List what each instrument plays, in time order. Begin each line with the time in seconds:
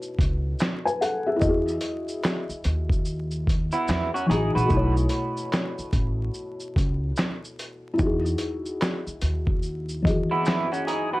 Already playing: felt piano B2 A3 E4 C#5
0.03 shaker
0.19 upright bass C#2, kick, closed hi-hat, shaker
0.59 snare, clap, shaker
0.85 felt piano B4 G#5, shaker
1.01 felt piano A4 F#5, closed hi-hat, shaker
1.26 felt piano G#4 E5
1.36 felt piano E4
1.40 upright bass E2, felt piano D#5, kick, shaker
1.44 felt piano F#4
1.49 felt piano G#4
1.68 shaker
1.81 closed hi-hat, shaker
2.08 shaker
2.24 snare, clap, shaker
2.49 muted upright bass stroke, shaker
2.64 upright bass D#2, closed hi-hat, shaker
2.89 kick, shaker
3.05 shaker
3.31 shaker
3.47 kick, closed hi-hat, shaker
3.72 clean electric guitar B3 E4, shaker
3.88 upright bass E2, snare, clap, shaker
4.14 clean electric guitar C#4 F#4, shaker
4.26 upright bass A1, felt piano E3 D#4, clean electric guitar G#4
4.31 clean electric guitar D#4, felt piano F#4 G#4, closed hi-hat, shaker
4.55 upright bass A#1, clean electric guitar F#4 B4, shaker
4.64 felt piano B2
4.68 upright bass B1, felt piano A3, kick, shaker
4.73 felt piano E4
4.77 felt piano C#5
4.97 shaker
5.09 closed hi-hat, shaker
5.37 shaker
5.53 snare, clap, shaker
5.78 muted upright bass stroke, shaker
5.93 upright bass A1, kick, closed hi-hat, shaker
6.34 shaker
6.60 shaker
6.76 upright bass C#2, kick, closed hi-hat, shaker
7.16 snare, clap, shaker
7.45 shaker
7.59 closed hi-hat, shaker
7.94 felt piano E4
7.98 upright bass E2, felt piano D#4, kick, shaker
8.02 felt piano F#4 G#4
8.26 shaker
8.38 closed hi-hat, shaker
8.66 shaker
8.82 snare, clap, shaker
9.07 muted upright bass stroke, shaker
9.22 upright bass D#2, closed hi-hat, shaker
9.47 kick
9.63 shaker
9.89 shaker
10.02 felt piano E3 F#4 D#5, kick
10.07 felt piano G#4, closed hi-hat, shaker
10.31 clean electric guitar B3 E4
10.45 snare, clap, shaker
10.72 clean electric guitar C#4 F#4, shaker
10.87 clean electric guitar D#4 G#4, closed hi-hat, shaker
11.13 clean electric guitar F#4 B4